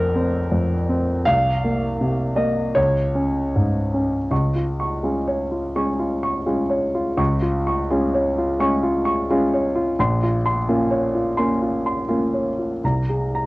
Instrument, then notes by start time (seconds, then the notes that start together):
grand piano
Already playing: A#1 F2 C4 A#4 C#5
0.16 C4
0.52 F2
0.89 C4
1.25 C2 F5
1.64 A#3
2.01 C3
2.36 A#3 D#5
2.75 C#2 C#5
3.15 C#4
3.56 G#2
3.94 C#4
4.31 C#2 C#6
4.55 F4
4.80 C#6
5.03 G#3 C#4 F4
5.28 C#5
5.51 F4
5.76 G#3 C#4 C#6
5.99 F4
6.23 C#6
6.46 G#3 C#4 F4
6.70 C#5
6.95 F4
7.17 C#2 C#6
7.42 F4
7.67 C#6
7.91 G#3 C#4 F4
8.14 C#5
8.38 F4
8.60 G#3 C#4 C#6
8.83 F4
9.06 C#6
9.31 G#3 C#4 F4
9.54 C#5
9.76 F4
9.99 A#1 C6
10.23 F4
10.46 C6
10.69 A#3 C#4 F4
10.91 C#5
11.15 F4
11.37 A#3 C#4 C6
11.62 F4
11.86 C6
12.09 A#3 C#4 F4
12.34 C#5
12.59 F4
12.84 C2 A#5
13.09 G#4
13.35 A#5